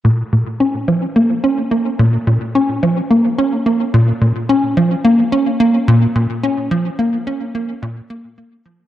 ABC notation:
X:1
M:4/4
L:1/8
Q:1/4=108
K:Bbm
V:1 name="Analog synth bass"
B,, B,, D F, B, D B, B,, | B,, D F, B, D B, B,, B,, | D F, B, D B, B,, B,, D | F, B, D B, B,, B, B, F, |]